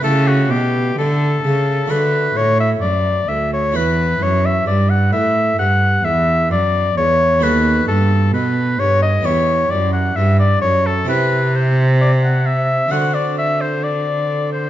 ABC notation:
X:1
M:4/4
L:1/16
Q:1/4=65
K:Edor
V:1 name="Oboe"
A F G2 A4 B2 c e d2 e c | B2 c e d f e2 f2 e2 d2 c2 | B2 A2 B2 c ^d c2 =d f e d c A | [K:Clyd] B2 c2 d f e2 f d e c d3 c |]
V:2 name="Harpsichord"
[A,EG]8 [A,F]8 | [EB]16 | [B,FA]8 [B,EG]8 | [K:Clyd] [CEG]8 [CDF]8 |]
V:3 name="Harpsichord" clef=bass
C,2 B,,2 D,2 C,2 D,2 A,,2 F,,2 D,,2 | E,,2 F,,2 G,,2 A,,2 G,,2 E,,2 F,,2 E,,2 | ^D,,2 G,,2 B,,2 G,,2 E,,2 F,,2 G,,2 F,,2 | [K:Clyd] C,8 D,8 |]
V:4 name="Cello" clef=bass
C,2 B,,2 D,2 C,2 D,2 A,,2 F,,2 D,,2 | E,,2 F,,2 G,,2 A,,2 G,,2 E,,2 F,,2 E,,2 | ^D,,2 G,,2 B,,2 G,,2 E,,2 F,,2 G,,2 F,,2 | [K:Clyd] C,8 D,8 |]